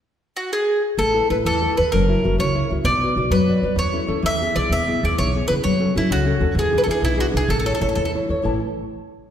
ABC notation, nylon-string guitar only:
X:1
M:6/8
L:1/8
Q:3/8=129
K:A
V:1 name="Nylon-string guitar"
z6 | A, [EAB] [EAB] E, [EAB] [EAB] | F, [EF^A] [EFA] C, [EFA] [EFA] | B, [FBd] [FBd] F, [FBd] [FBd] |
E, [CEA] [CEA] E, [B,EG] [B,EG] | B,, [B,EG] [B,EG] E, [B,EG] [B,EG] | F, [CFA] [CFA] C, [CFA] [CFA] | E, [DEG] [DEG] B,, [DEG] [DEG] |
A, [EAc] [EAc] E, [EAc] [EAc] | [A,,E,EAca] z4 z |]